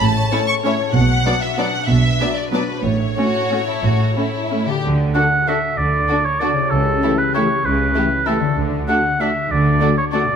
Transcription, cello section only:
0.02 0.26 A2 medium
0.95 1.19 B2 medium
1.89 2.13 B2 medium
2.84 3.10 A2 soft
3.84 4.10 A2 soft
4.84 5.10 D3 soft
5.78 6.03 D3 soft
6.71 6.97 C#3 soft
7.64 7.90 C#3 soft
8.57 8.83 D3 soft
9.51 9.76 D3 medium

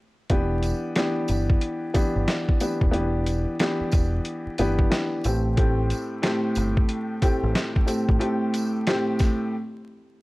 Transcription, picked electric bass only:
0.30 0.71 E1 loud
1.29 1.55 G1 medium
2.16 2.25 G1 medium
2.82 2.91 D#1 medium
2.94 3.45 E1 loud
3.81 muted picked electric bass stroke medium
3.93 4.18 E1 medium
4.47 muted picked electric bass stroke soft
4.59 4.84 G1 medium
5.25 5.92 A1 loud
6.57 6.82 G1 loud
7.43 7.53 A1 medium
8.09 8.19 G#1 medium

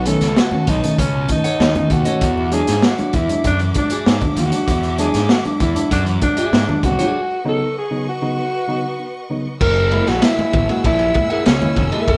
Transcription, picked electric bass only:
0.00 0.13 B1 loud
0.21 0.34 C#2 loud
0.52 muted picked electric bass stroke soft
0.68 0.80 B1 medium
0.99 1.24 C#2 loud
1.60 1.73 D#2 loud
1.91 2.04 D#2 loud
2.22 2.60 E2 medium
2.68 2.81 G#2 medium
2.99 muted picked electric bass stroke medium
3.14 3.27 E2 medium
3.45 3.70 F#2 loud
4.07 4.19 G#2 medium
4.37 4.50 D#2 loud
4.68 5.06 E2 loud
5.15 5.27 G#2 medium
5.46 muted picked electric bass stroke medium
5.61 5.73 E2 medium
5.91 6.17 F#2 loud
6.53 6.66 G#2 medium
6.84 6.96 C2 loud
9.61 10.00 F#1 loud
10.08 10.21 A#1 medium
10.39 muted picked electric bass stroke medium
10.54 10.67 A1 medium
10.85 11.10 A#1 loud
11.47 11.59 C#2 medium
11.77 11.90 F1 medium
12.08 12.17 F#1 loud

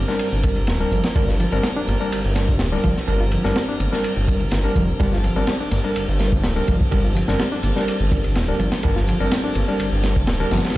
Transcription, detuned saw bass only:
0.33 0.69 G1 medium
0.68 0.83 D1 medium
0.92 1.00 G1 medium
1.16 1.45 G1 loud
1.52 1.60 G1 medium
1.88 1.96 G1 loud
2.12 2.22 G1 soft
2.25 2.61 G1 medium
2.60 2.76 D1 medium
2.85 2.92 G1 medium
3.08 3.37 G1 loud
3.45 3.52 G1 medium
3.80 3.88 G1 loud
4.17 4.45 G1 medium
4.52 4.67 G1 medium
4.76 4.91 F1 medium
5.00 5.29 G1 loud
5.36 5.43 G1 medium
5.72 5.80 G1 loud
5.96 6.06 G1 soft
6.08 6.45 G1 medium
6.43 6.59 D1 medium
6.68 6.76 G1 medium
6.92 7.21 G1 loud
7.28 7.36 G1 medium
7.64 7.72 G1 loud
8.00 8.37 G1 medium
8.36 8.51 D1 medium
8.59 8.68 G1 medium
8.85 9.13 G1 loud
9.20 9.27 G1 medium
9.56 9.64 G1 loud
9.80 9.90 G1 soft
9.92 10.29 G1 medium
10.28 10.43 D1 medium
10.52 10.60 G1 medium

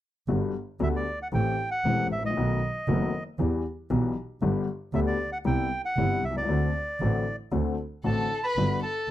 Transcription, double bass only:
0.28 0.50 G1 medium
0.80 1.02 D2 medium
1.33 1.55 A1 medium
1.84 2.06 E1 medium
2.10 2.35 A1 soft
2.35 2.58 B1 medium
2.88 3.09 F#1 medium
3.39 3.60 E2 medium
3.91 4.12 B1 medium
4.42 4.63 G1 medium
4.93 5.15 D2 medium
5.45 5.67 C2 medium
5.96 6.18 G1 medium
6.23 6.48 C2 soft
6.48 6.70 D2 medium
7.00 7.22 A1 medium
7.52 7.74 D2 medium
8.04 8.27 A1 medium
8.56 8.78 G1 medium

